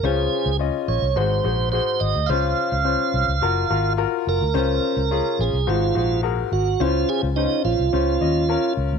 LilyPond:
<<
  \new Staff \with { instrumentName = "Tonewheel organ" } { \time 4/4 \key des \major \tempo 4 = 106 aes'4 r8 des''8 c''4 c''8 ees''8 | f''2. r8 bes'8~ | bes'4. aes'8 f'4 r8 ges'8 | f'8 aes'8 ees'8 f'2 r8 | }
  \new Staff \with { instrumentName = "Grand piano" } { \time 4/4 \key des \major <des' f' c''>8. r16 <des' f' ees''>8. r16 <ges' aes' c''>8 <ges' aes' c''>8 <ges' aes' c''>8. r16 | <des' f' c''>8. r16 <des' f' c''>8. r16 <f' ges' bes'>8 <f' ges' bes'>8 <f' ges' bes'>8. r16 | <des' f' c''>8. r16 <des' f' aes'>8. r16 <ges' aes' c''>8 <ges' aes' c''>8 <ges' aes' bes'>8. r16 | <des' fes' f' c''>8. r16 <des' ees' f' c''>8. r16 <des' f' c''>8 <des' f' ees''>8 <des' f' bes'>8. r16 | }
  \new Staff \with { instrumentName = "Grand piano" } { \clef bass \time 4/4 \key des \major des4. r8 aes,4. r8 | des4. r2 r8 | des4. r8 aes,4. r8 | des4. r8 des4. r8 | }
  \new Staff \with { instrumentName = "Fingered electric bass" } { \clef bass \time 4/4 \key des \major des,8 r16 des,8 r16 bes,,16 c,16 aes,,8 bes,,8. r16 aes,,16 d,16 | des,8 r16 des,8 r16 c,16 des,16 ges,,8 aes,,8. r16 ges,,16 d,16 | des,8 r16 des,8 r16 bes,,16 c,16 aes,,8 bes,,4 aes,,8 | des,8 r16 des,8 r16 bes,,16 c,16 des,8 ees,8. r16 des,16 d,16 | }
>>